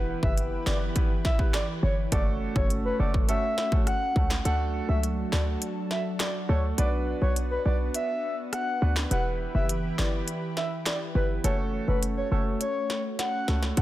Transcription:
Already playing: E1 E3 B3 E4 G4 B4
0.23 F#1 B3 E4 G4 B4 E5, kick
0.38 closed hi-hat
0.66 G1 B3 E4 G4 B4 D5, snare, clap
0.95 B3 E4 G4 B4, kick, closed hi-hat
1.25 E5, kick, snare
1.39 B3 E4 G4 B4, kick
1.54 D5, cross-stick, snare, clap, closed hi-hat
1.83 G1 C#5
2.12 F#1 A3 C#4 F#4 A4 D5, kick, closed hi-hat
2.55 F#1 A3 C#4 F#4 A4 C#5, kick
2.70 closed hi-hat
2.85 B4
2.99 F#1 A3 C#4 F#4 A4 D5
3.14 kick
3.28 A3 C#4 F#4 A4 E5, closed hi-hat
3.58 snare
3.72 A3 C#4 F#4 A4, kick
3.87 F#5, cross-stick, closed hi-hat
4.16 C#2 A3 C#4 F#4 A4, kick
4.31 snare, clap
4.45 D2 F#3 A3 D4 F#4 A4 F#5, closed hi-hat
4.89 C#2 A3 D4 F#4 A4 E5
5.03 closed hi-hat
5.32 D2 A3 D4 F#4 A4 D5, snare, clap
5.62 closed hi-hat
5.91 E5, snare
6.20 D5, cross-stick, snare, clap, closed hi-hat
6.49 D2 A3 D4 F#4 A4 C#5
6.78 B1 B3 D4 F#4 B4 D5, closed hi-hat
7.22 B1 B3 D4 F#4 B4 C#5
7.36 closed hi-hat
7.51 B4
7.65 B1 B3 D4 F#4 B4 D5
7.94 E5, closed hi-hat
8.53 F#5, cross-stick, closed hi-hat
8.82 D2 B3 D4 F#4 B4
8.96 snare, clap
9.11 E1 E3 B3 E4 G4 B4 F#5, closed hi-hat
9.55 F#1 B3 E4 G4 B4 E5
9.69 closed hi-hat
9.98 G1 B3 E4 G4 B4 D5, snare, clap
10.28 closed hi-hat
10.57 E5, snare
10.86 D5, cross-stick, snare, clap, closed hi-hat
11.15 G1 B3 E4 G4 B4
11.44 F#1 A3 C#4 F#4 A4 C#5, closed hi-hat
11.88 F#1 A3 C#4 F#4 A4 B4
12.03 closed hi-hat
12.17 C#5
12.31 F#1 A3 C#4 F#4 A4 C#5
12.61 C#5, closed hi-hat
12.90 snare
13.19 F#5, snare, closed hi-hat
13.48 C#2 A3 C#4 F#4 A4, snare
13.63 snare
13.77 D2 F#3 A3 D4 F#4 A4 F#5, kick, closed hi-hat

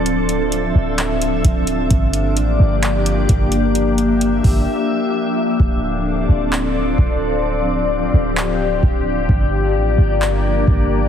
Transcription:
Already playing: D1 F3 C4 D4 A4
0.06 E5, closed hi-hat
0.29 closed hi-hat
0.52 closed hi-hat
0.75 D1
0.98 clap, closed hi-hat
1.22 closed hi-hat
1.45 D1, kick, closed hi-hat
1.67 closed hi-hat
1.90 G1 F3 A#3 D4 G4 D5, kick, closed hi-hat
2.13 closed hi-hat
2.37 A1, closed hi-hat
2.60 G1
2.83 clap, closed hi-hat
3.06 closed hi-hat
3.29 G1, kick, closed hi-hat
3.52 closed hi-hat
3.75 E5, closed hi-hat
3.98 closed hi-hat
4.21 closed hi-hat
4.44 G1, kick, open hi-hat
5.60 D1 C4 A4 D5, kick
6.29 D1
6.53 clap
6.98 D1, kick
7.44 G4
8.14 D1
8.37 clap
8.83 D1, kick
9.29 G1 A#3 D4, kick
9.75 A1
9.98 G1
10.22 clap
10.68 G1, kick

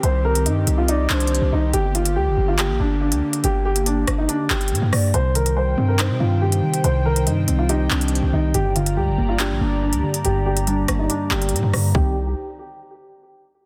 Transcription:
Already playing: D#3 C4 G4
0.03 C2 C5, closed hi-hat
0.25 A#4
0.35 closed hi-hat
0.46 G2 D#4, closed hi-hat
0.67 C2, closed hi-hat
0.78 F4
0.88 D#4 D5, closed hi-hat
1.10 C2 D4 C5, clap
1.20 closed hi-hat
1.27 closed hi-hat
1.35 closed hi-hat
1.42 C2
1.52 C2 D#4
1.73 G1 D3 A#3 G4, closed hi-hat
1.95 F4, closed hi-hat
2.06 closed hi-hat
2.16 D2 G4
2.27 G1
2.37 G1
2.48 F4
2.59 G4, clap, closed hi-hat
2.69 A#1
2.80 G1 D4
3.01 D4
3.12 D2, closed hi-hat
3.33 closed hi-hat
3.44 G1 G4, closed hi-hat
3.65 G4
3.76 closed hi-hat
3.86 D4, closed hi-hat
4.07 G1, cross-stick, closed hi-hat
4.18 D#4
4.28 D4, closed hi-hat
4.50 G1 G4, clap
4.61 closed hi-hat
4.68 A#2, closed hi-hat
4.75 closed hi-hat
4.82 G2
4.93 G2 D5, cross-stick, open hi-hat
5.14 C2 C3 D#3 C5 G5, closed hi-hat
5.35 D#3 A#4, closed hi-hat
5.46 closed hi-hat
5.57 G3 C5
5.78 G2 C4
5.88 A#4
5.99 D#4 C5, clap, closed hi-hat
6.10 C3
6.20 G2 C4 F4
6.41 G4
6.52 closed hi-hat
6.63 D#3
6.74 closed hi-hat
6.84 C2 C3 C5, closed hi-hat
7.05 D#3 A#4
7.16 closed hi-hat
7.27 G2 G3 D#4, closed hi-hat
7.48 C2 C4, closed hi-hat
7.59 F4
7.69 D#4 G4, closed hi-hat
7.90 C2 C4 D4, clap
8.01 closed hi-hat
8.08 closed hi-hat
8.15 closed hi-hat
8.22 C2
8.33 C2 D#3 D#4
8.54 G1 G2 G4 D5 A#5, closed hi-hat
8.76 D3 F4, closed hi-hat
8.86 closed hi-hat
8.97 D2 G3 G4
9.08 G1
9.18 G1 A#3
9.29 F4
9.39 D4 G4, clap, closed hi-hat
9.50 A#1
9.60 G1 A#3 D4
9.82 D4
9.93 D2, closed hi-hat
10.03 D3
10.14 closed hi-hat
10.25 G1 G2 G4, closed hi-hat
10.46 D3 G4
10.57 closed hi-hat
10.67 G3 D4, closed hi-hat
10.88 G1 A#3, cross-stick, closed hi-hat
10.99 D#4
11.09 D4, closed hi-hat
11.31 G1 A#3 G4, clap
11.42 closed hi-hat
11.49 A#2, closed hi-hat
11.56 closed hi-hat
11.63 G2
11.73 G2 D3, cross-stick, open hi-hat
11.95 C2 D#3 G3 C4 D#4 G4, kick, floor tom

